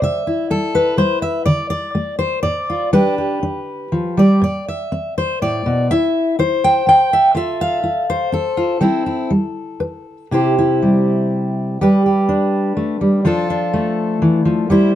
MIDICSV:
0, 0, Header, 1, 2, 480
1, 0, Start_track
1, 0, Key_signature, 0, "major"
1, 0, Tempo, 482315
1, 21, Time_signature, 3, 2, 24, 8
1, 2421, Tempo, 496278
1, 5301, Tempo, 485830
1, 9141, Tempo, 505902
1, 11061, Tempo, 481541
1, 14680, End_track
2, 0, Start_track
2, 0, Title_t, "Steel-string acoustic guitar"
2, 0, Program_c, 0, 25
2, 19, Note_on_c, 0, 48, 74
2, 35, Note_on_c, 0, 76, 90
2, 269, Note_on_c, 0, 64, 42
2, 450, Note_off_c, 0, 48, 0
2, 502, Note_on_c, 0, 55, 53
2, 503, Note_off_c, 0, 76, 0
2, 507, Note_on_c, 0, 69, 86
2, 745, Note_on_c, 0, 71, 86
2, 928, Note_off_c, 0, 55, 0
2, 968, Note_on_c, 0, 55, 57
2, 972, Note_off_c, 0, 69, 0
2, 976, Note_on_c, 0, 72, 87
2, 1212, Note_off_c, 0, 72, 0
2, 1216, Note_on_c, 0, 76, 84
2, 1403, Note_off_c, 0, 55, 0
2, 1430, Note_off_c, 0, 64, 0
2, 1444, Note_off_c, 0, 76, 0
2, 1448, Note_on_c, 0, 74, 93
2, 1457, Note_on_c, 0, 50, 83
2, 1459, Note_off_c, 0, 71, 0
2, 1680, Note_off_c, 0, 74, 0
2, 1692, Note_on_c, 0, 74, 86
2, 1888, Note_off_c, 0, 50, 0
2, 1938, Note_on_c, 0, 57, 60
2, 2172, Note_off_c, 0, 74, 0
2, 2176, Note_on_c, 0, 72, 89
2, 2373, Note_off_c, 0, 57, 0
2, 2411, Note_off_c, 0, 72, 0
2, 2415, Note_on_c, 0, 74, 94
2, 2427, Note_on_c, 0, 45, 61
2, 2677, Note_on_c, 0, 65, 50
2, 2853, Note_off_c, 0, 45, 0
2, 2877, Note_off_c, 0, 65, 0
2, 2894, Note_off_c, 0, 74, 0
2, 2901, Note_on_c, 0, 55, 84
2, 2904, Note_on_c, 0, 71, 73
2, 2906, Note_on_c, 0, 62, 57
2, 2917, Note_on_c, 0, 67, 57
2, 3133, Note_off_c, 0, 67, 0
2, 3145, Note_on_c, 0, 67, 40
2, 3329, Note_off_c, 0, 55, 0
2, 3371, Note_off_c, 0, 62, 0
2, 3383, Note_on_c, 0, 62, 56
2, 3815, Note_off_c, 0, 62, 0
2, 3860, Note_on_c, 0, 53, 57
2, 4102, Note_off_c, 0, 53, 0
2, 4105, Note_off_c, 0, 71, 0
2, 4105, Note_on_c, 0, 55, 66
2, 4121, Note_on_c, 0, 74, 79
2, 4319, Note_off_c, 0, 67, 0
2, 4339, Note_on_c, 0, 45, 74
2, 4344, Note_off_c, 0, 55, 0
2, 4347, Note_off_c, 0, 74, 0
2, 4359, Note_on_c, 0, 74, 74
2, 4591, Note_off_c, 0, 74, 0
2, 4599, Note_on_c, 0, 76, 77
2, 4773, Note_off_c, 0, 45, 0
2, 4826, Note_on_c, 0, 60, 62
2, 5070, Note_off_c, 0, 76, 0
2, 5076, Note_on_c, 0, 72, 77
2, 5254, Note_off_c, 0, 60, 0
2, 5307, Note_off_c, 0, 72, 0
2, 5308, Note_on_c, 0, 45, 61
2, 5312, Note_on_c, 0, 74, 92
2, 5544, Note_off_c, 0, 45, 0
2, 5547, Note_on_c, 0, 47, 71
2, 5786, Note_off_c, 0, 47, 0
2, 5788, Note_off_c, 0, 74, 0
2, 5793, Note_on_c, 0, 60, 72
2, 5793, Note_on_c, 0, 76, 101
2, 5801, Note_on_c, 0, 64, 53
2, 6222, Note_off_c, 0, 60, 0
2, 6255, Note_off_c, 0, 64, 0
2, 6267, Note_on_c, 0, 64, 66
2, 6269, Note_off_c, 0, 76, 0
2, 6273, Note_on_c, 0, 72, 87
2, 6519, Note_on_c, 0, 79, 107
2, 6695, Note_off_c, 0, 64, 0
2, 6740, Note_on_c, 0, 55, 59
2, 6749, Note_off_c, 0, 79, 0
2, 6759, Note_on_c, 0, 79, 98
2, 6982, Note_off_c, 0, 72, 0
2, 7002, Note_on_c, 0, 76, 92
2, 7167, Note_off_c, 0, 55, 0
2, 7213, Note_on_c, 0, 53, 86
2, 7217, Note_on_c, 0, 65, 60
2, 7223, Note_off_c, 0, 76, 0
2, 7224, Note_off_c, 0, 79, 0
2, 7227, Note_on_c, 0, 69, 52
2, 7235, Note_on_c, 0, 76, 91
2, 7476, Note_on_c, 0, 77, 90
2, 7645, Note_off_c, 0, 53, 0
2, 7685, Note_off_c, 0, 65, 0
2, 7697, Note_on_c, 0, 65, 61
2, 7946, Note_off_c, 0, 76, 0
2, 7955, Note_on_c, 0, 72, 91
2, 8131, Note_off_c, 0, 65, 0
2, 8179, Note_off_c, 0, 69, 0
2, 8179, Note_on_c, 0, 60, 56
2, 8186, Note_off_c, 0, 77, 0
2, 8190, Note_on_c, 0, 69, 77
2, 8425, Note_on_c, 0, 65, 54
2, 8611, Note_off_c, 0, 60, 0
2, 8632, Note_off_c, 0, 65, 0
2, 8657, Note_on_c, 0, 55, 82
2, 8663, Note_on_c, 0, 60, 61
2, 8668, Note_off_c, 0, 72, 0
2, 8673, Note_on_c, 0, 64, 52
2, 8898, Note_off_c, 0, 64, 0
2, 8910, Note_on_c, 0, 64, 43
2, 9092, Note_off_c, 0, 55, 0
2, 9144, Note_off_c, 0, 60, 0
2, 9147, Note_off_c, 0, 64, 0
2, 9148, Note_on_c, 0, 55, 67
2, 9575, Note_off_c, 0, 55, 0
2, 9619, Note_on_c, 0, 71, 56
2, 10058, Note_off_c, 0, 71, 0
2, 10105, Note_on_c, 0, 48, 57
2, 10114, Note_off_c, 0, 69, 0
2, 10114, Note_on_c, 0, 64, 52
2, 10122, Note_on_c, 0, 67, 53
2, 10131, Note_on_c, 0, 72, 57
2, 10352, Note_off_c, 0, 64, 0
2, 10363, Note_on_c, 0, 64, 44
2, 10590, Note_on_c, 0, 55, 48
2, 11514, Note_off_c, 0, 48, 0
2, 11523, Note_off_c, 0, 64, 0
2, 11523, Note_off_c, 0, 67, 0
2, 11528, Note_off_c, 0, 72, 0
2, 11539, Note_off_c, 0, 55, 0
2, 11551, Note_on_c, 0, 55, 72
2, 11556, Note_on_c, 0, 67, 57
2, 11565, Note_on_c, 0, 71, 64
2, 11786, Note_off_c, 0, 67, 0
2, 11798, Note_on_c, 0, 67, 43
2, 12024, Note_on_c, 0, 62, 52
2, 12498, Note_off_c, 0, 55, 0
2, 12502, Note_on_c, 0, 57, 52
2, 12741, Note_off_c, 0, 57, 0
2, 12745, Note_on_c, 0, 55, 59
2, 12952, Note_off_c, 0, 62, 0
2, 12959, Note_off_c, 0, 67, 0
2, 12962, Note_off_c, 0, 71, 0
2, 12981, Note_off_c, 0, 55, 0
2, 12982, Note_on_c, 0, 53, 75
2, 12989, Note_on_c, 0, 62, 57
2, 12996, Note_on_c, 0, 65, 60
2, 13004, Note_on_c, 0, 69, 65
2, 13223, Note_off_c, 0, 62, 0
2, 13234, Note_on_c, 0, 62, 52
2, 13468, Note_on_c, 0, 57, 59
2, 13941, Note_off_c, 0, 53, 0
2, 13950, Note_on_c, 0, 52, 57
2, 14180, Note_off_c, 0, 52, 0
2, 14184, Note_on_c, 0, 53, 63
2, 14396, Note_off_c, 0, 57, 0
2, 14399, Note_off_c, 0, 62, 0
2, 14399, Note_off_c, 0, 65, 0
2, 14422, Note_off_c, 0, 53, 0
2, 14429, Note_on_c, 0, 55, 75
2, 14432, Note_off_c, 0, 69, 0
2, 14440, Note_on_c, 0, 64, 61
2, 14448, Note_on_c, 0, 72, 64
2, 14664, Note_off_c, 0, 64, 0
2, 14680, Note_off_c, 0, 55, 0
2, 14680, Note_off_c, 0, 72, 0
2, 14680, End_track
0, 0, End_of_file